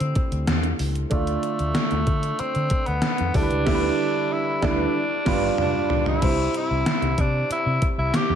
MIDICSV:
0, 0, Header, 1, 6, 480
1, 0, Start_track
1, 0, Tempo, 638298
1, 842, Time_signature, 4, 2, 24, 8
1, 6281, End_track
2, 0, Start_track
2, 0, Title_t, "Grand piano"
2, 0, Program_c, 0, 0
2, 0, Control_c, 0, 64, 127
2, 0, Note_on_c, 0, 50, 59
2, 0, Note_on_c, 0, 57, 60
2, 0, Note_on_c, 0, 64, 56
2, 0, Note_on_c, 0, 67, 56
2, 0, Note_on_c, 0, 72, 64
2, 804, Note_off_c, 0, 57, 0
2, 807, Note_off_c, 0, 64, 0
2, 811, Note_off_c, 0, 67, 0
2, 814, Note_off_c, 0, 72, 0
2, 825, Note_on_c, 0, 57, 58
2, 831, Note_on_c, 0, 62, 55
2, 836, Note_off_c, 0, 50, 0
2, 836, Note_on_c, 0, 50, 59
2, 840, Note_on_c, 0, 65, 57
2, 843, Note_on_c, 0, 74, 63
2, 852, Control_c, 0, 64, 0
2, 992, Control_c, 0, 64, 127
2, 1529, Note_off_c, 0, 50, 0
2, 2484, Note_off_c, 0, 57, 0
2, 2486, Note_off_c, 0, 62, 0
2, 2491, Note_off_c, 0, 65, 0
2, 2492, Note_off_c, 0, 74, 0
2, 2512, Note_on_c, 0, 55, 64
2, 2515, Note_on_c, 0, 62, 57
2, 2518, Note_on_c, 0, 50, 59
2, 2521, Note_on_c, 0, 64, 56
2, 2528, Note_on_c, 0, 69, 57
2, 2531, Control_c, 0, 64, 0
2, 2574, Note_off_c, 0, 69, 0
2, 2577, Note_on_c, 0, 71, 69
2, 2682, Control_c, 0, 64, 127
2, 2739, Note_off_c, 0, 55, 0
2, 2743, Note_off_c, 0, 50, 0
2, 2743, Note_off_c, 0, 62, 0
2, 2749, Note_off_c, 0, 64, 0
2, 2750, Note_on_c, 0, 55, 92
2, 2754, Note_on_c, 0, 62, 88
2, 2758, Note_on_c, 0, 50, 92
2, 2760, Note_on_c, 0, 64, 91
2, 2785, Note_off_c, 0, 71, 0
2, 2818, Note_on_c, 0, 71, 95
2, 2918, Note_off_c, 0, 55, 0
2, 2920, Note_off_c, 0, 62, 0
2, 2923, Note_off_c, 0, 50, 0
2, 2924, Note_off_c, 0, 64, 0
2, 2957, Note_off_c, 0, 71, 0
2, 3473, Note_on_c, 0, 55, 95
2, 3479, Note_on_c, 0, 62, 100
2, 3482, Note_on_c, 0, 50, 89
2, 3484, Note_on_c, 0, 64, 97
2, 3540, Note_on_c, 0, 71, 92
2, 3640, Note_off_c, 0, 55, 0
2, 3643, Note_off_c, 0, 62, 0
2, 3645, Note_off_c, 0, 50, 0
2, 3646, Note_off_c, 0, 64, 0
2, 3678, Note_off_c, 0, 71, 0
2, 3730, Control_c, 0, 64, 0
2, 3878, Control_c, 0, 64, 127
2, 3950, Note_on_c, 0, 55, 92
2, 3956, Note_on_c, 0, 62, 89
2, 3957, Note_on_c, 0, 43, 90
2, 3961, Note_on_c, 0, 65, 92
2, 3969, Note_on_c, 0, 71, 87
2, 4118, Note_off_c, 0, 55, 0
2, 4122, Note_off_c, 0, 62, 0
2, 4123, Note_off_c, 0, 43, 0
2, 4125, Note_off_c, 0, 65, 0
2, 4129, Note_off_c, 0, 71, 0
2, 4677, Note_on_c, 0, 55, 60
2, 4682, Note_on_c, 0, 60, 55
2, 4684, Note_on_c, 0, 48, 60
2, 4689, Note_on_c, 0, 64, 54
2, 4690, Control_c, 0, 64, 0
2, 4692, Note_on_c, 0, 72, 69
2, 4841, Control_c, 0, 64, 127
2, 5373, Note_off_c, 0, 48, 0
2, 6281, Note_off_c, 0, 55, 0
2, 6281, Note_off_c, 0, 60, 0
2, 6281, Note_off_c, 0, 64, 0
2, 6281, Note_off_c, 0, 72, 0
2, 6281, End_track
3, 0, Start_track
3, 0, Title_t, "Tenor saxophone"
3, 0, Program_c, 1, 66
3, 0, Note_on_c, 1, 60, 86
3, 574, Note_off_c, 1, 60, 0
3, 844, Note_on_c, 1, 57, 86
3, 1800, Note_on_c, 1, 60, 94
3, 1812, Note_off_c, 1, 57, 0
3, 2157, Note_on_c, 1, 59, 91
3, 2169, Note_off_c, 1, 60, 0
3, 2523, Note_on_c, 1, 62, 103
3, 2534, Note_off_c, 1, 59, 0
3, 3249, Note_on_c, 1, 64, 101
3, 3260, Note_off_c, 1, 62, 0
3, 3484, Note_off_c, 1, 64, 0
3, 3488, Note_on_c, 1, 62, 99
3, 4175, Note_off_c, 1, 62, 0
3, 4214, Note_on_c, 1, 62, 82
3, 4543, Note_off_c, 1, 62, 0
3, 4572, Note_on_c, 1, 64, 87
3, 4902, Note_off_c, 1, 64, 0
3, 4938, Note_on_c, 1, 64, 90
3, 5413, Note_on_c, 1, 62, 90
3, 5424, Note_off_c, 1, 64, 0
3, 5647, Note_off_c, 1, 62, 0
3, 5653, Note_on_c, 1, 64, 100
3, 5906, Note_off_c, 1, 64, 0
3, 6005, Note_on_c, 1, 64, 94
3, 6133, Note_on_c, 1, 67, 105
3, 6144, Note_off_c, 1, 64, 0
3, 6281, Note_off_c, 1, 67, 0
3, 6281, End_track
4, 0, Start_track
4, 0, Title_t, "Fingered electric bass"
4, 0, Program_c, 2, 33
4, 3, Note_on_c, 2, 50, 91
4, 93, Note_off_c, 2, 50, 0
4, 239, Note_on_c, 2, 38, 88
4, 330, Note_off_c, 2, 38, 0
4, 358, Note_on_c, 2, 40, 82
4, 540, Note_off_c, 2, 40, 0
4, 598, Note_on_c, 2, 37, 88
4, 779, Note_off_c, 2, 37, 0
4, 838, Note_on_c, 2, 38, 94
4, 1019, Note_off_c, 2, 38, 0
4, 1201, Note_on_c, 2, 38, 79
4, 1291, Note_off_c, 2, 38, 0
4, 1442, Note_on_c, 2, 38, 89
4, 1532, Note_off_c, 2, 38, 0
4, 1558, Note_on_c, 2, 50, 85
4, 1740, Note_off_c, 2, 50, 0
4, 1922, Note_on_c, 2, 50, 90
4, 2012, Note_off_c, 2, 50, 0
4, 2164, Note_on_c, 2, 38, 81
4, 2254, Note_off_c, 2, 38, 0
4, 2407, Note_on_c, 2, 41, 81
4, 2495, Note_off_c, 2, 41, 0
4, 2518, Note_on_c, 2, 38, 92
4, 2609, Note_off_c, 2, 38, 0
4, 2645, Note_on_c, 2, 37, 84
4, 2734, Note_off_c, 2, 37, 0
4, 2760, Note_on_c, 2, 38, 95
4, 2924, Note_off_c, 2, 38, 0
4, 3481, Note_on_c, 2, 38, 95
4, 3644, Note_off_c, 2, 38, 0
4, 3961, Note_on_c, 2, 31, 91
4, 4124, Note_off_c, 2, 31, 0
4, 4682, Note_on_c, 2, 36, 97
4, 4862, Note_off_c, 2, 36, 0
4, 5043, Note_on_c, 2, 36, 86
4, 5132, Note_off_c, 2, 36, 0
4, 5277, Note_on_c, 2, 36, 93
4, 5369, Note_off_c, 2, 36, 0
4, 5403, Note_on_c, 2, 48, 100
4, 5582, Note_off_c, 2, 48, 0
4, 5760, Note_on_c, 2, 48, 89
4, 5851, Note_off_c, 2, 48, 0
4, 6001, Note_on_c, 2, 36, 82
4, 6091, Note_off_c, 2, 36, 0
4, 6238, Note_on_c, 2, 40, 81
4, 6281, Note_off_c, 2, 40, 0
4, 6281, End_track
5, 0, Start_track
5, 0, Title_t, "Muted fingered electric bass strokes"
5, 1804, Note_on_c, 9, 29, 45
5, 1880, Note_off_c, 9, 29, 0
5, 5641, Note_on_c, 9, 29, 47
5, 5716, Note_off_c, 9, 29, 0
5, 6281, End_track
6, 0, Start_track
6, 0, Title_t, "Drums"
6, 3, Note_on_c, 9, 42, 46
6, 78, Note_off_c, 9, 42, 0
6, 116, Note_on_c, 9, 42, 75
6, 120, Note_on_c, 9, 36, 88
6, 191, Note_off_c, 9, 42, 0
6, 195, Note_off_c, 9, 36, 0
6, 241, Note_on_c, 9, 42, 43
6, 316, Note_off_c, 9, 42, 0
6, 357, Note_on_c, 9, 38, 105
6, 360, Note_on_c, 9, 42, 85
6, 432, Note_off_c, 9, 38, 0
6, 435, Note_off_c, 9, 42, 0
6, 477, Note_on_c, 9, 42, 50
6, 552, Note_off_c, 9, 42, 0
6, 596, Note_on_c, 9, 46, 64
6, 672, Note_off_c, 9, 46, 0
6, 718, Note_on_c, 9, 42, 46
6, 793, Note_off_c, 9, 42, 0
6, 833, Note_on_c, 9, 42, 78
6, 838, Note_on_c, 9, 36, 99
6, 908, Note_off_c, 9, 42, 0
6, 913, Note_off_c, 9, 36, 0
6, 957, Note_on_c, 9, 42, 46
6, 1032, Note_off_c, 9, 42, 0
6, 1075, Note_on_c, 9, 42, 65
6, 1150, Note_off_c, 9, 42, 0
6, 1197, Note_on_c, 9, 42, 51
6, 1272, Note_off_c, 9, 42, 0
6, 1313, Note_on_c, 9, 38, 108
6, 1315, Note_on_c, 9, 42, 85
6, 1389, Note_off_c, 9, 38, 0
6, 1391, Note_off_c, 9, 42, 0
6, 1434, Note_on_c, 9, 42, 43
6, 1509, Note_off_c, 9, 42, 0
6, 1555, Note_on_c, 9, 42, 69
6, 1558, Note_on_c, 9, 36, 89
6, 1630, Note_off_c, 9, 42, 0
6, 1633, Note_off_c, 9, 36, 0
6, 1677, Note_on_c, 9, 42, 50
6, 1752, Note_off_c, 9, 42, 0
6, 1796, Note_on_c, 9, 42, 86
6, 1871, Note_off_c, 9, 42, 0
6, 1916, Note_on_c, 9, 42, 46
6, 1991, Note_off_c, 9, 42, 0
6, 2030, Note_on_c, 9, 42, 77
6, 2037, Note_on_c, 9, 36, 96
6, 2106, Note_off_c, 9, 42, 0
6, 2113, Note_off_c, 9, 36, 0
6, 2154, Note_on_c, 9, 42, 43
6, 2229, Note_off_c, 9, 42, 0
6, 2269, Note_on_c, 9, 38, 103
6, 2273, Note_on_c, 9, 42, 79
6, 2345, Note_off_c, 9, 38, 0
6, 2348, Note_off_c, 9, 42, 0
6, 2393, Note_on_c, 9, 42, 52
6, 2468, Note_off_c, 9, 42, 0
6, 2514, Note_on_c, 9, 46, 60
6, 2517, Note_on_c, 9, 36, 98
6, 2589, Note_off_c, 9, 46, 0
6, 2592, Note_off_c, 9, 36, 0
6, 2636, Note_on_c, 9, 42, 45
6, 2712, Note_off_c, 9, 42, 0
6, 2756, Note_on_c, 9, 38, 97
6, 2756, Note_on_c, 9, 49, 75
6, 2758, Note_on_c, 9, 36, 98
6, 2832, Note_off_c, 9, 38, 0
6, 2832, Note_off_c, 9, 49, 0
6, 2833, Note_off_c, 9, 36, 0
6, 3478, Note_on_c, 9, 38, 99
6, 3479, Note_on_c, 9, 36, 97
6, 3553, Note_off_c, 9, 38, 0
6, 3554, Note_off_c, 9, 36, 0
6, 3957, Note_on_c, 9, 38, 102
6, 3957, Note_on_c, 9, 49, 81
6, 3959, Note_on_c, 9, 36, 104
6, 4032, Note_off_c, 9, 38, 0
6, 4032, Note_off_c, 9, 49, 0
6, 4035, Note_off_c, 9, 36, 0
6, 4198, Note_on_c, 9, 45, 80
6, 4273, Note_off_c, 9, 45, 0
6, 4436, Note_on_c, 9, 43, 83
6, 4512, Note_off_c, 9, 43, 0
6, 4559, Note_on_c, 9, 43, 78
6, 4634, Note_off_c, 9, 43, 0
6, 4679, Note_on_c, 9, 42, 79
6, 4679, Note_on_c, 9, 49, 82
6, 4681, Note_on_c, 9, 36, 102
6, 4754, Note_off_c, 9, 42, 0
6, 4754, Note_off_c, 9, 49, 0
6, 4756, Note_off_c, 9, 36, 0
6, 4921, Note_on_c, 9, 42, 67
6, 4996, Note_off_c, 9, 42, 0
6, 5161, Note_on_c, 9, 38, 107
6, 5163, Note_on_c, 9, 42, 83
6, 5236, Note_off_c, 9, 38, 0
6, 5238, Note_off_c, 9, 42, 0
6, 5282, Note_on_c, 9, 42, 42
6, 5357, Note_off_c, 9, 42, 0
6, 5399, Note_on_c, 9, 42, 69
6, 5401, Note_on_c, 9, 36, 88
6, 5474, Note_off_c, 9, 42, 0
6, 5476, Note_off_c, 9, 36, 0
6, 5645, Note_on_c, 9, 42, 88
6, 5720, Note_off_c, 9, 42, 0
6, 5879, Note_on_c, 9, 42, 81
6, 5882, Note_on_c, 9, 36, 94
6, 5954, Note_off_c, 9, 42, 0
6, 5957, Note_off_c, 9, 36, 0
6, 6119, Note_on_c, 9, 38, 102
6, 6122, Note_on_c, 9, 42, 85
6, 6194, Note_off_c, 9, 38, 0
6, 6198, Note_off_c, 9, 42, 0
6, 6281, End_track
0, 0, End_of_file